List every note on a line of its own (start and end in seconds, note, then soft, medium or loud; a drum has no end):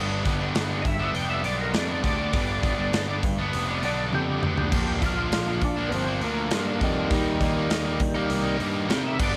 0.00 0.24 G1 loud
0.00 0.42 G2 medium
0.00 0.24 D3 medium
0.00 0.26 G3 medium
0.00 0.26 B3 medium
0.00 0.28 D4 medium
0.25 0.54 G1 medium
0.25 0.41 D3 medium
0.25 0.40 G3 medium
0.25 0.40 B3 medium
0.25 0.39 D4 medium
0.25 kick medium
0.25 open hi-hat medium
0.39 1.73 G2 medium
0.39 0.84 D3 medium
0.39 0.72 G3 medium
0.39 0.71 B3 medium
0.39 0.69 D4 medium
0.55 0.84 G1 medium
0.55 snare loud
0.55 open hi-hat medium
0.69 0.85 G3 medium
0.69 0.85 B3 medium
0.69 0.85 D4 medium
0.82 1.14 G1 medium
0.82 0.86 D#5 medium
0.82 muted overdriven electric guitar stroke soft
0.82 kick medium
0.82 open hi-hat medium
0.87 1.15 E5 loud
1.00 1.30 G3 medium
1.00 1.29 B3 medium
1.00 1.29 D4 medium
1.14 1.43 F1 medium
1.14 1.30 G5 medium
1.14 open hi-hat medium
1.29 1.43 G3 medium
1.29 1.44 B3 medium
1.29 1.45 D4 medium
1.29 1.44 E5 medium
1.43 1.73 B1 medium
1.43 1.73 D3 medium
1.43 1.74 G3 medium
1.43 1.74 B3 medium
1.43 1.76 D4 medium
1.43 1.59 D5 medium
1.43 open hi-hat medium
1.61 1.74 A#4 medium
1.73 2.02 F2 medium
1.73 2.19 G2 medium
1.73 2.01 D3 medium
1.73 1.90 G3 medium
1.73 1.88 B3 medium
1.73 1.88 D4 medium
1.73 2.04 D5 medium
1.73 snare loud
1.73 open hi-hat medium
1.89 2.02 G3 medium
1.89 2.03 B3 medium
1.89 2.04 D4 medium
2.03 2.33 D2 medium
2.03 2.31 D3 medium
2.03 2.19 G3 medium
2.03 2.18 B3 medium
2.03 2.17 D4 medium
2.03 3.21 D5 medium
2.03 kick medium
2.03 open hi-hat medium
2.17 2.32 G3 medium
2.17 2.33 B3 medium
2.17 2.34 D4 medium
2.32 2.62 G1 medium
2.32 2.79 G2 medium
2.32 2.61 D3 medium
2.32 2.63 G3 medium
2.32 2.63 B3 medium
2.32 2.65 D4 medium
2.32 kick loud
2.32 open hi-hat medium
2.63 2.92 G1 medium
2.63 2.79 D3 medium
2.63 2.78 G3 medium
2.63 2.78 B3 medium
2.63 2.78 D4 medium
2.63 kick medium
2.63 open hi-hat medium
2.78 3.39 G2 medium
2.78 3.23 D3 medium
2.78 3.10 G3 medium
2.78 3.08 B3 medium
2.78 3.08 D4 medium
2.92 3.22 G1 medium
2.92 snare loud
2.92 open hi-hat medium
3.09 3.23 G3 medium
3.09 3.23 B3 medium
3.09 3.25 D4 medium
3.23 3.52 G1 medium
3.23 muted overdriven electric guitar stroke soft
3.23 kick loud
3.23 open hi-hat medium
3.39 3.69 G3 medium
3.39 3.68 B3 medium
3.39 3.67 D4 medium
3.53 3.82 F1 medium
3.53 open hi-hat medium
3.68 3.83 G3 medium
3.68 3.83 B3 medium
3.68 3.84 D4 medium
3.83 4.11 B1 medium
3.83 4.12 D3 medium
3.83 4.12 G3 medium
3.83 4.13 B3 medium
3.83 4.14 D4 medium
3.83 4.13 D5 medium
3.83 open hi-hat medium
4.12 4.42 F2 medium
4.12 4.57 G2 medium
4.12 4.42 D3 loud
4.12 4.28 G3 medium
4.12 4.27 B3 medium
4.12 4.26 D4 medium
4.12 5.01 G4 medium
4.12 high tom medium
4.27 4.42 G3 medium
4.27 4.43 B3 medium
4.27 4.44 D4 medium
4.43 4.71 D2 medium
4.43 4.70 D3 medium
4.43 4.58 G3 medium
4.43 4.57 B3 medium
4.43 4.56 D4 medium
4.43 mid tom medium
4.57 4.71 G3 medium
4.57 4.71 B3 medium
4.57 4.70 D4 medium
4.57 floor tom medium
4.71 5.00 A#1 medium
4.71 5.18 A#2 medium
4.71 5.00 D3 medium
4.71 5.01 F3 loud
4.71 5.03 A#3 medium
4.71 5.02 D4 loud
4.71 kick loud
4.71 crash loud
5.01 5.31 A#1 medium
5.01 5.17 D3 medium
5.01 5.17 F3 medium
5.01 5.17 A#3 medium
5.01 5.16 D4 medium
5.01 5.04 E4 medium
5.01 kick medium
5.01 open hi-hat medium
5.06 5.62 F4 loud
5.17 5.78 A#2 medium
5.17 5.62 D3 medium
5.17 5.49 F3 medium
5.17 5.47 A#3 medium
5.17 5.47 D4 loud
5.32 5.60 A#1 medium
5.32 snare loud
5.32 open hi-hat medium
5.48 5.62 F3 medium
5.48 5.62 A#3 medium
5.48 5.62 D4 medium
5.61 5.90 A#1 medium
5.61 5.92 D4 loud
5.61 muted overdriven electric guitar stroke soft
5.61 kick medium
5.61 open hi-hat medium
5.76 6.07 F3 medium
5.76 6.06 A#3 medium
5.76 6.05 D4 medium
5.89 6.21 G1 medium
5.89 5.92 B3 medium
5.89 open hi-hat medium
5.94 6.22 C4 loud
6.06 6.21 F3 medium
6.06 6.22 A#3 medium
6.06 6.23 D4 medium
6.21 6.50 D2 medium
6.21 6.51 D3 medium
6.21 6.52 F3 medium
6.21 6.53 A#3 medium
6.21 6.81 A#3 medium
6.21 6.54 D4 medium
6.21 open hi-hat medium
6.50 6.79 G2 medium
6.50 6.97 A#2 medium
6.50 6.81 D3 medium
6.50 6.68 F3 medium
6.50 6.67 A#3 loud
6.50 snare loud
6.50 open hi-hat medium
6.55 6.66 D4 loud
6.67 6.82 F3 medium
6.67 6.83 A#3 medium
6.67 6.84 D4 medium
6.81 7.09 F2 medium
6.81 7.10 D3 medium
6.81 8.57 D#3 medium
6.81 6.98 F3 medium
6.81 8.58 G3 loud
6.81 6.97 A#3 medium
6.81 kick medium
6.81 open hi-hat medium
6.85 6.96 D4 medium
6.97 7.11 F3 medium
6.97 7.10 A#3 medium
6.97 7.10 D4 medium
7.10 7.39 D#2 loud
7.10 7.40 D#3 medium
7.10 7.41 G3 loud
7.10 7.42 A#3 loud
7.10 7.42 D#4 medium
7.10 kick loud
7.10 open hi-hat medium
7.41 7.69 D#2 medium
7.41 7.57 D#3 medium
7.41 7.57 G3 medium
7.41 7.56 A#3 medium
7.41 7.55 D#4 medium
7.41 kick medium
7.41 open hi-hat medium
7.56 8.00 D#3 medium
7.56 7.87 G3 medium
7.56 7.85 A#3 medium
7.56 7.83 D#4 loud
7.70 7.99 D#2 medium
7.70 snare loud
7.70 open hi-hat medium
7.84 8.01 G3 medium
7.84 8.00 A#3 medium
7.84 8.01 D#4 medium
8.00 8.29 D#2 medium
8.00 muted overdriven electric guitar stroke soft
8.00 kick medium
8.00 open hi-hat medium
8.15 8.46 G3 medium
8.15 8.44 A#3 medium
8.15 8.43 D#4 medium
8.30 8.59 C2 medium
8.30 open hi-hat medium
8.44 8.60 G3 medium
8.44 8.60 A#3 medium
8.44 8.60 D#4 medium
8.59 8.88 G2 medium
8.59 8.87 D#3 medium
8.59 8.88 G3 medium
8.59 8.88 A#3 medium
8.59 8.89 D#4 medium
8.59 open hi-hat medium
8.88 9.18 C3 loud
8.88 9.17 D#3 medium
8.88 9.05 G3 medium
8.88 9.03 A#3 loud
8.88 9.01 D#4 loud
8.88 9.05 G5 loud
8.88 snare loud
8.88 open hi-hat medium
9.03 9.19 G3 medium
9.03 9.18 A#3 medium
9.03 9.17 D#4 medium
9.07 9.20 E5 medium
9.18 9.37 G1 loud
9.18 9.37 G2 medium
9.18 9.37 D3 medium
9.18 9.35 G3 medium
9.18 9.34 B3 loud
9.18 9.33 D4 loud
9.18 kick loud
9.18 crash loud
9.23 9.36 D5 medium
9.33 9.37 D4 medium